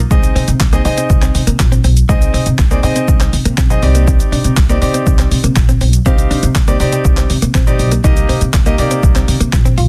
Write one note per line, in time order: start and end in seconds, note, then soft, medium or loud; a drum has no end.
0.11 0.27 C2 loud
0.11 0.21 G#3 medium
0.11 0.46 C4 medium
0.11 0.47 D#4 medium
0.11 0.47 G#4 medium
0.11 0.47 D#5 loud
0.11 kick loud
0.11 shaker medium
0.23 muted clean electric guitar stroke soft
0.23 closed hi-hat medium
0.23 shaker soft
0.23 shaker medium
0.36 0.44 C3 loud
0.36 0.45 C4 medium
0.36 open hi-hat medium
0.36 shaker soft
0.48 0.56 C3 loud
0.48 closed hi-hat medium
0.48 shaker medium
0.48 shaker soft
0.60 0.77 C2 loud
0.60 kick loud
0.60 snare loud
0.60 clap loud
0.60 shaker medium
0.72 0.83 A#3 medium
0.72 0.80 C4 medium
0.72 0.80 D#4 medium
0.72 0.80 G#4 medium
0.72 0.80 D#5 loud
0.72 closed hi-hat medium
0.72 shaker medium
0.85 1.01 C3 loud
0.85 1.42 C4 medium
0.85 1.42 D#4 medium
0.85 1.42 G#4 medium
0.85 1.43 D#5 loud
0.85 muted clean electric guitar stroke soft
0.85 open hi-hat medium
0.85 shaker medium
0.85 shaker soft
0.98 1.08 C4 medium
0.98 closed hi-hat medium
0.98 shaker soft
0.98 shaker medium
1.10 1.26 C2 loud
1.10 kick loud
1.10 shaker medium
1.22 1.32 C4 medium
1.22 clap medium
1.22 closed hi-hat soft
1.22 shaker soft
1.35 1.43 C3 loud
1.35 muted clean electric guitar stroke soft
1.35 open hi-hat medium
1.35 shaker medium
1.47 1.55 C3 medium
1.47 1.57 A#3 medium
1.47 closed hi-hat medium
1.47 shaker soft
1.47 shaker medium
1.59 1.76 A#1 loud
1.59 muted clean electric guitar stroke soft
1.59 kick loud
1.59 snare loud
1.59 clap loud
1.59 shaker medium
1.72 1.82 C4 medium
1.72 closed hi-hat medium
1.72 shaker medium
1.84 2.00 B1 loud
1.84 1.94 C4 medium
1.84 open hi-hat medium
1.84 shaker medium
1.97 closed hi-hat medium
1.97 shaker medium
2.09 2.25 C2 loud
2.09 2.19 G#3 medium
2.09 2.45 C4 medium
2.09 2.45 D#4 medium
2.09 2.45 G#4 medium
2.09 2.45 D#5 medium
2.09 kick loud
2.09 shaker medium
2.21 muted clean electric guitar stroke soft
2.21 closed hi-hat medium
2.21 shaker soft
2.21 shaker medium
2.34 2.42 C3 loud
2.34 2.44 C4 medium
2.34 open hi-hat medium
2.34 shaker soft
2.46 2.54 C3 loud
2.46 closed hi-hat medium
2.46 shaker medium
2.46 shaker soft
2.58 2.75 C2 loud
2.58 kick loud
2.58 snare medium
2.58 clap loud
2.58 shaker medium
2.71 2.81 A#3 medium
2.71 2.78 C4 medium
2.71 2.78 D#4 medium
2.71 2.78 G#4 medium
2.71 2.78 D5 medium
2.71 closed hi-hat medium
2.71 shaker medium
2.83 3.00 C3 loud
2.83 3.33 C4 medium
2.83 3.33 D#4 medium
2.83 3.34 G#4 medium
2.83 3.34 D#5 loud
2.83 muted clean electric guitar stroke soft
2.83 open hi-hat medium
2.83 shaker soft
2.96 3.06 C4 medium
2.96 closed hi-hat medium
2.96 shaker medium
2.96 shaker soft
3.08 3.24 C2 loud
3.08 kick loud
3.08 shaker medium
3.21 3.31 C4 medium
3.21 clap medium
3.21 closed hi-hat soft
3.21 shaker soft
3.33 3.41 C3 loud
3.33 muted clean electric guitar stroke soft
3.33 open hi-hat medium
3.33 shaker medium
3.45 3.54 C3 loud
3.45 3.55 A#3 medium
3.45 closed hi-hat medium
3.45 shaker medium
3.58 3.74 B1 loud
3.58 3.68 C4 medium
3.58 kick loud
3.58 snare loud
3.58 clap loud
3.58 shaker medium
3.70 3.81 C4 medium
3.70 3.81 D#4 medium
3.70 3.83 G#4 medium
3.70 3.83 D#5 loud
3.70 muted clean electric guitar stroke soft
3.70 closed hi-hat medium
3.70 shaker medium
3.82 4.15 C2 loud
3.82 4.52 C4 medium
3.82 4.52 D#4 medium
3.82 4.52 G4 medium
3.82 4.52 D5 loud
3.82 open hi-hat medium
3.82 shaker soft
3.95 4.05 A#3 medium
3.95 closed hi-hat medium
3.95 shaker medium
4.07 4.17 C4 medium
4.07 kick loud
4.07 shaker medium
4.20 muted clean electric guitar stroke soft
4.20 closed hi-hat medium
4.20 shaker soft
4.20 shaker medium
4.32 4.40 C3 loud
4.32 4.42 D4 medium
4.32 open hi-hat medium
4.32 shaker soft
4.44 4.53 C3 loud
4.44 closed hi-hat medium
4.44 shaker medium
4.44 shaker soft
4.57 4.73 C2 loud
4.57 kick loud
4.57 snare loud
4.57 clap loud
4.57 shaker medium
4.69 4.79 A#3 medium
4.69 4.77 C4 medium
4.69 4.77 D#4 medium
4.69 4.77 G4 medium
4.69 4.77 D5 loud
4.69 closed hi-hat medium
4.69 shaker medium
4.81 4.98 C3 loud
4.81 5.39 C4 medium
4.81 5.39 D#4 medium
4.81 5.39 G4 medium
4.81 5.39 D5 loud
4.81 muted clean electric guitar stroke soft
4.81 open hi-hat medium
4.81 shaker soft
4.94 5.04 C4 medium
4.94 closed hi-hat medium
4.94 shaker soft
4.94 shaker medium
5.06 5.23 C2 loud
5.06 kick loud
5.06 shaker medium
5.19 5.29 C4 medium
5.19 clap medium
5.19 closed hi-hat soft
5.19 shaker soft
5.31 5.39 C3 loud
5.31 muted clean electric guitar stroke soft
5.31 open hi-hat medium
5.31 shaker medium
5.44 5.52 C3 loud
5.44 5.54 A#3 medium
5.44 closed hi-hat medium
5.44 shaker soft
5.44 shaker medium
5.56 5.72 A#1 loud
5.56 muted clean electric guitar stroke soft
5.56 kick loud
5.56 snare loud
5.56 clap loud
5.56 shaker medium
5.69 5.79 C4 medium
5.69 closed hi-hat medium
5.69 shaker medium
5.81 5.97 B1 medium
5.81 5.91 C4 medium
5.81 open hi-hat medium
5.81 shaker medium
5.93 closed hi-hat medium
5.93 shaker medium
6.06 6.22 C2 loud
6.06 6.42 C4 medium
6.06 6.16 C4 medium
6.06 6.42 D#4 medium
6.06 6.42 G4 medium
6.06 6.42 F5 loud
6.06 kick loud
6.06 shaker medium
6.18 muted clean electric guitar stroke soft
6.18 closed hi-hat medium
6.18 shaker soft
6.18 shaker medium
6.31 6.39 C3 loud
6.31 6.41 D4 medium
6.31 open hi-hat medium
6.31 shaker soft
6.43 6.51 C3 loud
6.43 closed hi-hat medium
6.43 shaker medium
6.55 6.72 C2 loud
6.55 kick loud
6.55 snare loud
6.55 clap loud
6.55 shaker medium
6.68 6.78 A#3 medium
6.68 6.75 C4 medium
6.68 6.75 D#4 medium
6.68 6.75 G4 medium
6.68 6.75 D5 loud
6.68 closed hi-hat medium
6.68 shaker medium
6.80 6.96 C3 loud
6.80 7.30 C4 medium
6.80 7.30 D#4 medium
6.80 7.30 G4 medium
6.80 7.30 D5 loud
6.80 muted clean electric guitar stroke soft
6.80 open hi-hat medium
6.80 shaker medium
6.80 shaker soft
6.92 7.03 C4 medium
6.92 closed hi-hat medium
6.92 shaker medium
6.92 shaker soft
7.05 7.21 C2 loud
7.05 kick loud
7.05 shaker medium
7.17 7.27 C4 medium
7.17 clap medium
7.17 closed hi-hat soft
7.17 shaker soft
7.30 7.38 C3 loud
7.30 muted clean electric guitar stroke soft
7.30 open hi-hat medium
7.30 shaker medium
7.42 7.50 C3 loud
7.42 7.52 A#3 medium
7.42 closed hi-hat medium
7.42 shaker medium
7.42 shaker soft
7.54 7.71 A#1 loud
7.54 7.65 C4 medium
7.54 kick loud
7.54 snare loud
7.54 clap loud
7.54 shaker medium
7.67 7.88 C4 medium
7.67 7.88 D#4 medium
7.67 7.89 G4 medium
7.67 7.89 D5 loud
7.67 muted clean electric guitar stroke soft
7.67 closed hi-hat medium
7.67 shaker medium
7.79 7.95 B1 loud
7.79 open hi-hat medium
7.79 shaker medium
7.92 8.02 A#3 medium
7.92 closed hi-hat medium
7.92 shaker medium
8.04 8.20 C2 loud
8.04 8.40 A#3 medium
8.04 8.40 D#4 medium
8.04 8.14 D#4 medium
8.04 8.40 G4 medium
8.04 8.40 D#5 loud
8.04 kick loud
8.04 shaker medium
8.16 muted clean electric guitar stroke soft
8.16 closed hi-hat medium
8.16 shaker soft
8.16 shaker medium
8.29 8.37 C3 medium
8.29 8.39 C4 medium
8.29 open hi-hat medium
8.29 shaker soft
8.41 8.49 C3 loud
8.41 closed hi-hat medium
8.41 shaker medium
8.41 shaker soft
8.53 8.70 C2 loud
8.53 kick loud
8.53 snare medium
8.53 clap loud
8.53 shaker medium
8.66 8.73 A#3 medium
8.66 8.76 A#3 medium
8.66 8.73 D#4 medium
8.66 8.73 G4 medium
8.66 8.74 D#5 loud
8.66 closed hi-hat medium
8.66 shaker medium
8.78 8.95 C3 loud
8.78 9.36 A#3 medium
8.78 9.36 D#4 medium
8.78 9.36 G4 medium
8.78 9.36 D5 medium
8.78 muted clean electric guitar stroke soft
8.78 open hi-hat medium
8.78 shaker soft
8.91 9.01 C4 medium
8.91 closed hi-hat medium
8.91 shaker medium
8.91 shaker soft
9.03 9.19 C2 loud
9.03 kick loud
9.03 shaker medium
9.16 9.26 C4 medium
9.16 clap medium
9.16 closed hi-hat soft
9.16 shaker soft
9.28 9.36 C3 loud
9.28 muted clean electric guitar stroke soft
9.28 open hi-hat medium
9.28 shaker medium
9.40 9.49 C3 medium
9.40 9.50 A#3 medium
9.40 closed hi-hat medium
9.40 shaker soft
9.40 shaker medium
9.53 9.69 A#1 loud
9.53 muted clean electric guitar stroke soft
9.53 kick loud
9.53 snare loud
9.53 clap loud
9.53 shaker medium
9.65 9.75 C4 medium
9.65 closed hi-hat medium
9.65 shaker medium
9.78 9.88 B1 loud
9.78 9.88 F4 medium
9.78 open hi-hat medium
9.78 shaker medium